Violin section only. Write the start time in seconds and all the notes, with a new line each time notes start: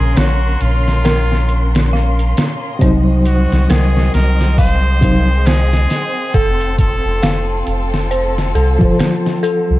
Already playing: C#4 A#4 C6
2.81 C4 F#4 D#5
4.58 G#4
6.34 F4 A4